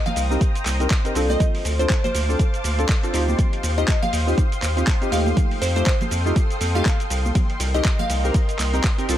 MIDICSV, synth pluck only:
0, 0, Header, 1, 2, 480
1, 0, Start_track
1, 0, Tempo, 495868
1, 1357, Time_signature, 4, 2, 24, 8
1, 8884, End_track
2, 0, Start_track
2, 0, Title_t, "Synth pluck"
2, 0, Program_c, 0, 84
2, 57, Note_on_c, 0, 77, 96
2, 241, Note_off_c, 0, 77, 0
2, 1257, Note_on_c, 0, 75, 96
2, 1413, Note_off_c, 0, 75, 0
2, 1737, Note_on_c, 0, 72, 89
2, 1921, Note_off_c, 0, 72, 0
2, 1977, Note_on_c, 0, 72, 99
2, 2317, Note_off_c, 0, 72, 0
2, 3657, Note_on_c, 0, 75, 88
2, 3841, Note_off_c, 0, 75, 0
2, 3896, Note_on_c, 0, 77, 97
2, 4080, Note_off_c, 0, 77, 0
2, 4957, Note_on_c, 0, 77, 92
2, 5157, Note_off_c, 0, 77, 0
2, 5436, Note_on_c, 0, 72, 93
2, 5549, Note_off_c, 0, 72, 0
2, 5576, Note_on_c, 0, 72, 92
2, 5760, Note_off_c, 0, 72, 0
2, 6536, Note_on_c, 0, 77, 95
2, 6876, Note_off_c, 0, 77, 0
2, 7496, Note_on_c, 0, 75, 87
2, 7680, Note_off_c, 0, 75, 0
2, 7737, Note_on_c, 0, 77, 96
2, 7921, Note_off_c, 0, 77, 0
2, 8884, End_track
0, 0, End_of_file